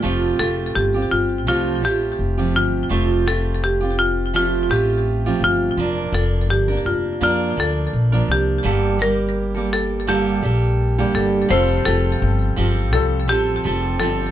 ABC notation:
X:1
M:4/4
L:1/16
Q:"Swing 16ths" 1/4=84
K:F
V:1 name="Marimba"
F2 A2 G2 F2 F2 G4 F2- | F2 A2 G2 F2 F2 G4 F2- | F2 A2 G2 F2 F2 A4 G2- | G2 B4 A2 G6 A2 |
c2 A6 A2 G4 A2 |]
V:2 name="Upright piano"
z16 | z16 | z16 | z16 |
[G,FA]4- [G,FA] z3 [G,FA]4- [G,FA] z3 |]
V:3 name="Steel-string acoustic guitar"
[F,A,CFG]2 [A,CFG]3 [CFG]3 [F,A,CFG]2 [A,CFG]3 [F,A,CFG]3 | [F,A,CFG]2 [A,CFG]3 [CFG]3 [F,A,CFG]2 [A,CFG]3 [F,A,CFG]3 | [F,B,DB]2 [F,B,D]3 [B,DB]3 [F,B,DB]2 [F,B,D]3 [F,B,DB]3 | [G,,D,G,B,GA]2 [G,B,G]3 [G,B,GA]3 [G,,D,G,B,GA]2 [G,B,GA]3 [G,,D,G,B,GA]3 |
[F,CGA]2 [F,CGA]4 [F,CGA]4 [F,CGA]2 [F,CGA]2 [F,CGA]2 |]
V:4 name="Upright bass" clef=bass
F,,,2 F,,,2 G,,,2 G,,,2 C,,2 A,,,2 F,,,2 G,,,2 | F,,,8- F,,,2 A,,,4 G,,,2 | F,,,2 F,,,2 G,,,2 F,,,2 F,,2 D,,2 B,,,2 C,,2 | G,,,8- G,,,2 B,,,4 G,,,2 |
F,,,2 F,,,2 G,,,2 G,,,2 C,,2 A,,,2 F,,,2 G,,,2 |]